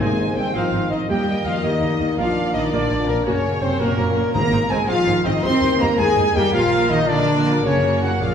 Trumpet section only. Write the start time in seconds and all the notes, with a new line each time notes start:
0.00 G#5
0.36 G5
0.54 F5
0.91 D#5
1.09 G5
1.45 F5
1.63 D#5
2.18 F5
2.53 D#5
2.72 D5
3.08 A#4
3.25 C#5
3.63 C5
3.80 A#4
4.34 A#5
4.71 G#5
4.89 F5
5.26 D#5
5.44 C6
5.80 A#5
5.98 G#5
6.35 G5
6.53 F5
6.90 D#5
7.09 D5
7.65 C#5
8.03 F#5
8.22 F5